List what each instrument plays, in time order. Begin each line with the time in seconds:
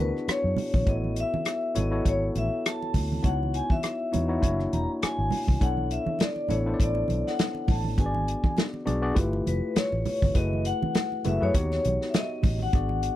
Already playing: tine electric piano B3 D4 E4 F#4 G#4
0.00 fingered electric bass D2, vibraphone B4
0.17 cross-stick
0.28 vibraphone C#5, muted fingered electric bass stroke, cross-stick, closed hi-hat
0.44 fingered electric bass F#2
0.57 open hi-hat, low conga
0.74 fingered electric bass A#1, kick, high conga
0.87 fingered electric bass A1, tine electric piano B3 E4 F#4 A4 C#5, vibraphone D#5, kick, closed hi-hat
1.04 high conga
1.16 closed hi-hat
1.20 vibraphone E5
1.33 muted fingered electric bass stroke, high conga
1.45 cross-stick, closed hi-hat
1.75 fingered electric bass G#1, tine electric piano B3 E4 F#4 A4 C#5, closed hi-hat, low conga
1.79 vibraphone D#5
1.91 tine electric piano B3 E4 F#4 A4 C#5
2.05 fingered electric bass G#1, vibraphone C#5, kick, closed hi-hat, muted conga
2.35 fingered electric bass A1, vibraphone E5, closed hi-hat, high conga
2.66 vibraphone A5, cross-stick, closed hi-hat
2.83 muted conga
2.94 fingered electric bass D2, kick, open hi-hat, low conga
3.12 high conga
3.23 fingered electric bass C#2, tine electric piano B3 D#4 E4 F#4 C#5, vibraphone F#5, kick, closed hi-hat, muted conga, low conga
3.43 high conga
3.54 vibraphone G#5, closed hi-hat
3.70 vibraphone E5, muted fingered electric bass stroke, kick, high conga
3.83 cross-stick, closed hi-hat, muted conga
4.12 fingered electric bass E2, tine electric piano B3 D#4 E4 F#4 C#5, closed hi-hat, low conga
4.28 tine electric piano B3 D#4 E4 F#4 C#5
4.41 fingered electric bass F#1, tine electric piano A3 D4 E4 F#4 C#5, kick, closed hi-hat, muted conga
4.48 tine electric piano A#3
4.60 cross-stick, muted conga
4.73 fingered electric bass E1, vibraphone A#5, closed hi-hat, high conga
5.02 vibraphone G#5, muted fingered electric bass stroke, cross-stick, closed hi-hat
5.18 fingered electric bass G#1
5.31 open hi-hat, low conga
5.47 fingered electric bass C2, kick, high conga
5.61 fingered electric bass B1, tine electric piano B3 D4 E4 A4 C#5, vibraphone F#5, kick, closed hi-hat
5.77 high conga
5.91 vibraphone E5, closed hi-hat
6.06 muted fingered electric bass stroke, high conga
6.19 vibraphone D5, snare, closed hi-hat, muted conga
6.36 muted conga
6.48 fingered electric bass A1, tine electric piano B3 D4 E4 A4 C#5, vibraphone C#5, closed hi-hat, low conga
6.66 tine electric piano B3 D4 E4 A4 C5
6.74 tine electric piano D5
6.80 fingered electric bass A1, vibraphone D5, kick, closed hi-hat
6.95 muted conga
7.08 fingered electric bass B1, closed hi-hat, high conga
7.27 vibraphone F#5, snare
7.39 snare, closed hi-hat
7.55 muted conga
7.68 fingered electric bass A1, vibraphone A5, kick, open hi-hat, low conga
7.84 high conga
7.98 fingered electric bass G#1, tine electric piano B3 D4 F#4 G#4 B4, vibraphone G#5, kick, closed hi-hat, muted conga
8.06 tine electric piano D5
8.14 muted conga, high conga
8.28 closed hi-hat
8.44 muted fingered electric bass stroke, kick, high conga
8.57 snare, closed hi-hat, muted conga
8.74 muted conga
8.86 fingered electric bass B1, tine electric piano B3 D4 F#4 G#4 D5, closed hi-hat, low conga
9.02 tine electric piano B3 D4 F#4 G#4 D5
9.15 fingered electric bass G1, tine electric piano A3 E4 F4 G4 B4, kick, closed hi-hat
9.33 muted conga
9.47 fingered electric bass F1, vibraphone B4, closed hi-hat, high conga
9.76 vibraphone C#5, muted fingered electric bass stroke, snare, closed hi-hat, muted conga
9.92 fingered electric bass A1, muted conga
10.05 open hi-hat, low conga
10.22 fingered electric bass G1, kick, high conga
10.34 fingered electric bass F#1, tine electric piano A3 E4 F#4 G#4 B4, vibraphone D#5, kick, closed hi-hat
10.53 high conga
10.65 vibraphone F#5, closed hi-hat
10.83 muted fingered electric bass stroke, high conga
10.95 snare, closed hi-hat, muted conga
11.12 muted conga
11.24 fingered electric bass F#1, tine electric piano A3 E4 F#4 G#4 B4, vibraphone E5, closed hi-hat, low conga
11.40 fingered electric bass F#2, tine electric piano A3 E4 F#4 G#4 B4, vibraphone C#5
11.54 fingered electric bass D#2, tine electric piano B3 D#4 F#4 G4 C#5, kick, closed hi-hat
11.71 snare, muted conga
11.85 fingered electric bass B1, closed hi-hat, high conga
12.01 snare
12.09 vibraphone E5
12.14 vibraphone D#5, snare, closed hi-hat, muted conga
12.43 fingered electric bass A1, kick, open hi-hat, low conga
12.59 vibraphone F#5, high conga
12.73 fingered electric bass G#1, tine electric piano B3 D4 F#4 G#4 D5, kick, closed hi-hat
12.89 muted conga, high conga
13.03 closed hi-hat